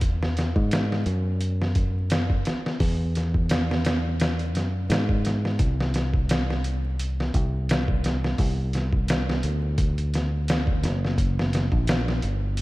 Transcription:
Already playing: fingered electric bass E2
0.01 kick, closed hi-hat
0.23 snare
0.37 snare, closed hi-hat
0.56 fingered electric bass G#2, kick
0.71 snare, closed hi-hat
0.92 snare
1.06 fingered electric bass F#2, closed hi-hat
1.41 closed hi-hat
1.62 snare
1.75 kick, closed hi-hat
2.10 snare, closed hi-hat
2.30 kick
2.45 snare, closed hi-hat
2.66 snare
2.80 fingered electric bass E2, kick, open hi-hat
3.15 snare, closed hi-hat
3.34 kick
3.49 snare, closed hi-hat
3.71 snare
3.85 snare, closed hi-hat
4.20 snare, closed hi-hat
4.39 closed hi-hat
4.55 fingered electric bass F#2, snare, closed hi-hat
4.90 fingered electric bass G#2, snare, closed hi-hat
5.09 kick
5.25 snare, closed hi-hat
5.45 snare
5.59 fingered electric bass C2, kick, closed hi-hat
5.80 snare
5.94 snare, closed hi-hat
6.14 kick
6.29 snare, closed hi-hat
6.50 snare
6.64 closed hi-hat
6.99 closed hi-hat
7.20 snare
7.34 fingered electric bass C2, kick, closed hi-hat
7.69 snare, closed hi-hat
7.88 kick
8.04 snare, closed hi-hat
8.24 snare
8.38 fingered electric bass C2, kick, open hi-hat
8.73 snare, closed hi-hat
8.93 kick
9.08 snare, closed hi-hat
9.29 snare
9.43 fingered electric bass D2, closed hi-hat
9.78 kick, closed hi-hat
9.98 closed hi-hat
10.14 snare, closed hi-hat
10.48 snare, closed hi-hat
10.67 kick
10.83 fingered electric bass F#1, snare, closed hi-hat
11.05 snare
11.18 kick, closed hi-hat
11.39 snare
11.53 snare, closed hi-hat
11.72 fingered electric bass A#1, kick
11.87 snare, closed hi-hat
12.08 snare
12.22 fingered electric bass G1, closed hi-hat
12.57 closed hi-hat

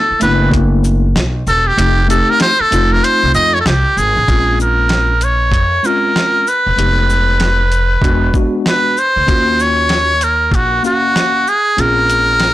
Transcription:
Already playing: muted trumpet A4
0.10 muted upright bass stroke
0.20 upright bass F#1, tine electric piano A3 B3 D4 E4, muted trumpet B4, closed hi-hat, shaker
0.52 kick, closed hi-hat
0.84 shaker
1.15 upright bass B1, snare, closed hi-hat
1.47 upright bass E1, muted trumpet A4, shaker
1.67 muted trumpet G4
1.77 upright bass F1, tine electric piano A3 C4 D#4 G4, closed hi-hat
2.08 tine electric piano A3 C4 D#4 G4, muted trumpet A4, closed hi-hat, shaker
2.30 muted trumpet A#4
2.40 muted trumpet C5, snare, closed hi-hat
2.60 muted trumpet A4, muted upright bass stroke
2.71 upright bass F1, tine electric piano A3 C4 D#4 F4, closed hi-hat, shaker
2.93 muted trumpet A#4
3.04 muted trumpet C5, closed hi-hat
3.23 upright bass C2
3.34 upright bass F2, muted trumpet D#5, shaker
3.54 muted trumpet C#5
3.61 muted trumpet A4
3.66 upright bass C2, muted trumpet G4, snare, closed hi-hat
3.97 upright bass G#1, muted trumpet G#4, shaker
4.16 upright bass A1
4.27 upright bass A#1, tine electric piano G#3 C4 C#4 F4, kick, closed hi-hat
4.60 muted trumpet A#4, shaker
4.89 snare, closed hi-hat
5.21 muted trumpet C#5, closed hi-hat, shaker
5.51 upright bass F2, kick, closed hi-hat
5.83 tine electric piano G#3 C4 C#4 F4, muted trumpet A#4, shaker
6.16 snare, closed hi-hat
6.47 muted trumpet B4, shaker
6.66 upright bass E1
6.76 upright bass F1, tine electric piano G#3 B3 D#4 G4, closed hi-hat
7.10 shaker
7.40 snare, closed hi-hat
7.72 closed hi-hat, shaker
8.02 upright bass E1, tine electric piano G#3 B3 D4 F#4, kick, closed hi-hat
8.33 tine electric piano G#3 B3 D4 F#4, kick, shaker
8.66 muted trumpet B4, snare, closed hi-hat
8.97 muted trumpet C5, shaker
9.16 upright bass D2
9.27 upright bass D#2, tine electric piano A#3 C#4 F4 F#4, kick, closed hi-hat
9.60 muted trumpet C#5, shaker
9.89 snare, closed hi-hat
10.21 muted trumpet A#4, closed hi-hat, shaker
10.51 upright bass A#1, muted trumpet F#4, kick, closed hi-hat
10.83 tine electric piano A#3 C#4 F#4 F5, muted trumpet F#4, shaker
11.16 snare, closed hi-hat
11.47 muted trumpet G#4, shaker
11.77 upright bass A#1, tine electric piano C4 C#4 F4 G#4, muted trumpet A#4, closed hi-hat
12.10 closed hi-hat, shaker
12.40 snare, closed hi-hat

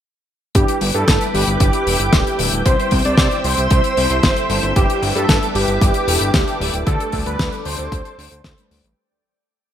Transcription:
0.55 analog synth bass G1, analog polysynth G3 D4 E4 B4, analog synth lead G4, string machine B4 E5 G5 D6, kick, closed hi-hat
0.68 closed hi-hat
0.81 analog synth bass G1, open hi-hat
0.94 analog synth bass G2, analog synth lead A4, closed hi-hat
1.08 analog synth bass G1, kick, snare, closed hi-hat
1.21 closed hi-hat
1.34 analog synth bass G1, analog synth lead G4, open hi-hat
1.47 analog synth bass G1, closed hi-hat
1.60 analog synth bass G1, kick, closed hi-hat
1.73 closed hi-hat
1.87 analog synth bass E1, analog polysynth G3 D4 E4 A4, open hi-hat
2.00 analog synth bass G1, closed hi-hat
2.13 analog synth bass D1, kick, snare, closed hi-hat
2.27 closed hi-hat
2.39 analog synth bass D1, analog polysynth G3 D4 E4 A4, open hi-hat
2.52 analog synth bass D1, closed hi-hat
2.66 analog synth bass C2, analog polysynth G3 C4 E4 C5, analog synth lead C5, string machine C5 E6, kick, closed hi-hat
2.79 closed hi-hat
2.91 analog synth bass C2, kick, open hi-hat
3.05 analog synth bass C2, analog synth lead D5, closed hi-hat
3.18 analog synth bass C2, kick, snare, closed hi-hat
3.31 closed hi-hat
3.44 analog synth bass C2, analog synth lead C5, open hi-hat
3.57 analog synth bass C2, closed hi-hat
3.70 analog synth bass C2, kick, closed hi-hat
3.84 closed hi-hat
3.97 analog synth bass C2, analog polysynth G3 C4 E4 A4, open hi-hat
4.10 analog synth bass C2, closed hi-hat
4.23 analog synth bass G1, kick, snare, closed hi-hat
4.36 closed hi-hat
4.50 analog synth bass G1, analog polysynth G3 C4 E4 A4, open hi-hat
4.63 analog synth bass G1, closed hi-hat
4.76 analog synth bass G1, analog polysynth G3 D4 E4 B4, analog synth lead G4, string machine B4 D6, kick, closed hi-hat
4.90 closed hi-hat
5.02 analog synth bass G1, open hi-hat
5.16 analog synth bass G2, analog synth lead A4, closed hi-hat
5.29 analog synth bass G1, kick, snare, closed hi-hat
5.43 closed hi-hat
5.55 analog synth bass G1, analog synth lead G4, open hi-hat
5.68 analog synth bass G1, closed hi-hat
5.81 analog synth bass G1, kick, closed hi-hat
5.94 closed hi-hat
6.08 analog synth bass E1, analog polysynth G3 D4 E4 A4, open hi-hat
6.21 analog synth bass G1, closed hi-hat
6.34 analog synth bass D1, kick, snare, closed hi-hat
6.48 closed hi-hat
6.60 analog synth bass D1, analog polysynth G3 D4 E4 A4, open hi-hat
6.74 analog synth bass D1, closed hi-hat
6.87 analog synth bass D2, analog polysynth G3 A3 D4 A4, string machine A4 D5, analog synth lead A4, kick, closed hi-hat
7.00 closed hi-hat
7.12 analog synth bass D2, kick, open hi-hat
7.26 analog synth bass D2, analog synth lead B4, closed hi-hat
7.39 analog synth bass D2, kick, snare, closed hi-hat
7.52 closed hi-hat
7.65 analog synth bass D2, analog synth lead C5, open hi-hat
7.78 analog synth bass D2, closed hi-hat
7.92 analog synth bass D2, kick, closed hi-hat
8.05 closed hi-hat
8.18 analog synth bass D2, open hi-hat
8.31 analog synth bass D2, closed hi-hat
8.44 analog synth bass D2, kick, snare, closed hi-hat
8.58 analog polysynth G3 A3 D4 B4, closed hi-hat
8.71 analog synth bass D2, open hi-hat
8.84 analog synth bass A1, closed hi-hat

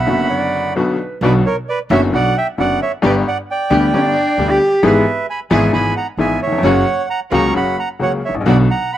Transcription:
Already playing: clarinet E5, bandoneon F#5 B5
0.06 upright bass F#1, upright piano F#1 F#2 D3 F#3 B3 F#4, string section B3 D4 F#4
0.30 clarinet D5
0.76 upright piano B1 B2 D3 F#3 B3 F#4, string section B3 D4 F#4, clarinet B4
1.21 upright bass B1, upright piano B1 B2 D3 F#3 B3 F#4, string section B3 D4 F#4, bandoneon B4 D5
1.46 bandoneon A#4 C#5
1.69 bandoneon B4 D5
1.90 upright bass F#1, upright piano F#1 F#2 D3 F#3 B3 F#4, string section B3 D4 F#4, bandoneon C#5 E5
2.13 upright piano B1 B2 D3 F#3 B3 F#4, upright bass B1, string section B3 D4 F#4, bandoneon D5 F#5
2.37 bandoneon E5 G5
2.58 upright bass F#1, upright piano F#1 F#2 D3 F#3 B3 F#4, string section B3 D4 F#4, bandoneon D5 F#5
2.82 bandoneon C#5 E5
3.02 upright piano G1 G2 D3 G3 B3 G4, upright bass G1, string section B3 D4 G4, bandoneon B4 D5
3.28 bandoneon D5 F#5
3.51 bandoneon D5 G5
3.70 upright bass D2, upright piano D2 D3 G3 B3 G4, string section B3 D4 G4
3.93 upright bass G1, upright piano G1 G2 D3 G3 B3 G4, string section B3 D4 G4, cello C#4
4.05 cello D4
4.38 upright bass D2, upright piano D2 D3 G3 B3 G4, string section B3 D4 G4
4.50 cello G4
4.83 upright bass G#1, upright piano G#1 G#2 E3 G#3 B3 G#4, string section B3 E4 G#4, bandoneon B4 E5
5.30 bandoneon G#5 B5
5.50 upright piano G#1 G#2 E3 G#3 B3 G#4, upright bass G#1, string section B3 E4 G#4, bandoneon E5 G#5
5.73 upright piano G#1 G#2 E3 G#3 B3 G#4, upright bass G#1, string section B3 E4 G#4, bandoneon G#5 B5
5.97 bandoneon F#5 A#5
6.17 upright bass G#1, upright piano G#1 G#2 E3 G#3 B3 G#4, string section B3 E4 G#4, bandoneon E5 G#5
6.42 bandoneon C#5 E5
6.47 upright piano D#2
6.52 upright piano E2
6.58 upright piano F2
6.63 upright bass F#1, upright piano F#2 C#3 F#3 A#3 F#4, string section A#3 C#4 F#4, bandoneon C#5 F#5
7.10 bandoneon F#5 A#5
7.31 upright bass C#2, upright piano C#2 C#3 F#3 A#3 F#4, string section A#3 C#4 F#4, bandoneon A#5 C#6
7.54 upright bass F#1, upright piano F#2 C#3 F#3 A#3 F#4, string section A#3 C#4 F#4, bandoneon F#5 B5
7.79 bandoneon F#5 A#5
7.99 upright piano C#2 C#3 F#3 A#3 F#4, upright bass C#2, string section A#3 C#4 F#4, bandoneon C#5 F#5
8.25 bandoneon C#5 E5
8.29 upright piano G#1, upright bass G#1
8.35 upright piano A1, upright bass A1
8.41 upright piano A#1, upright bass A#1
8.45 upright bass B1, upright piano B1 B2 D3 F#3 B3 F#4, string section B3 D4 F#4, bandoneon D5 F#5
8.71 bandoneon F#5 A#5
8.93 bandoneon F#5 B5

